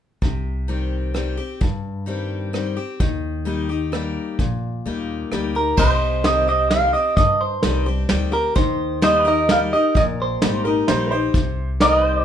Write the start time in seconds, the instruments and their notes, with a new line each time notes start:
0.22 upright bass C2, steel-string acoustic guitar C3, kick
0.68 steel-string acoustic guitar D#3 G3 C4 G4
1.14 steel-string acoustic guitar D#3 G3 C4 G4, cross-stick
1.37 steel-string acoustic guitar C4 G4
1.61 steel-string acoustic guitar G2, upright bass G2, kick
2.06 steel-string acoustic guitar D#3 G3 C4 G4
2.53 steel-string acoustic guitar D#3 G3 C4 G4, cross-stick
2.77 steel-string acoustic guitar C4 G4
3.00 upright bass D#2, steel-string acoustic guitar D#3, kick
3.45 steel-string acoustic guitar G3 A#3 D#4 G4
3.69 steel-string acoustic guitar D#4 G4
3.92 steel-string acoustic guitar G3 A#3 D#4 G4, cross-stick
4.39 upright bass A#1, steel-string acoustic guitar A#2, kick
4.86 upright bass D#2, steel-string acoustic guitar G3 A#3 D#4 G4
5.32 upright bass D2, steel-string acoustic guitar G3 A#3 D#4 G4, cross-stick
5.55 steel-string acoustic guitar D#4 G4, clean electric guitar A#4
5.77 upright bass C2, steel-string acoustic guitar C3, pedal steel guitar C5 D#5, clean electric guitar C5, kick, crash
6.24 steel-string acoustic guitar D#3 G3 C4 G4, clean electric guitar D#5, snare, closed hi-hat
6.48 steel-string acoustic guitar C4 G4, clean electric guitar D#5
6.70 steel-string acoustic guitar D#3 G3 C4 G4, clean electric guitar F5, snare, closed hi-hat
6.93 steel-string acoustic guitar C4 G4, clean electric guitar D#5
7.17 upright bass G2, steel-string acoustic guitar G2, clean electric guitar D#5, kick, closed hi-hat
7.41 clean electric guitar C5
7.63 upright bass C2, steel-string acoustic guitar D#3 G3 C4 G4, snare, closed hi-hat
7.86 steel-string acoustic guitar C4 G4
8.09 upright bass D2, steel-string acoustic guitar D#3 G3 C4 G4, snare, closed hi-hat
8.32 steel-string acoustic guitar C4 G4, clean electric guitar A#4
8.56 upright bass D#2, steel-string acoustic guitar D#3, clean electric guitar C5, kick, closed hi-hat
9.02 steel-string acoustic guitar G3 A#3 D#4 G4, pedal steel guitar C5 D#5, clean electric guitar D#5, snare, closed hi-hat
9.25 steel-string acoustic guitar D#4 G4, pedal steel guitar A#4, clean electric guitar D#5
9.49 steel-string acoustic guitar G3 A#3 D#4 G4, clean electric guitar F5, snare, closed hi-hat
9.73 steel-string acoustic guitar D#4 G4, clean electric guitar D#5
9.95 upright bass A#1, steel-string acoustic guitar A#2, clean electric guitar D#5, kick, closed hi-hat
10.22 clean electric guitar C5
10.42 upright bass G#1, steel-string acoustic guitar G3 A#3 D#4 G4, snare, closed hi-hat
10.64 steel-string acoustic guitar D#4 G4, upright piano A#4
10.88 upright bass A#1, steel-string acoustic guitar G3 A#3 D#4 G4, upright piano C5, snare, closed hi-hat
11.07 upright piano B4
11.11 steel-string acoustic guitar D#4 G4, upright piano C5
11.34 upright bass C2, steel-string acoustic guitar C3, kick, closed hi-hat
11.81 steel-string acoustic guitar D#3 G3 C4 G4, pedal steel guitar A#4 D#5, clean electric guitar D#5, snare, closed hi-hat
12.06 pedal steel guitar C5